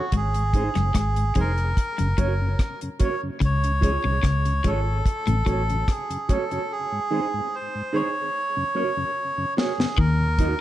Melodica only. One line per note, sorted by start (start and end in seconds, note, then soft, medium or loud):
0.00 0.15 F#4 medium
0.16 0.97 G#4 medium
0.99 1.39 G#4 medium
1.40 2.61 A#4 loud
2.62 2.80 A#4 medium
3.04 3.21 C#5 medium
3.45 4.70 C#5 loud
4.67 5.93 A4 loud
5.91 6.31 G#4 medium
6.31 6.72 A4 medium
6.72 7.56 G#4 medium
7.55 7.96 C5 medium
7.95 9.54 C#5 loud
9.58 9.99 G#4 medium
9.99 10.61 A#4 loud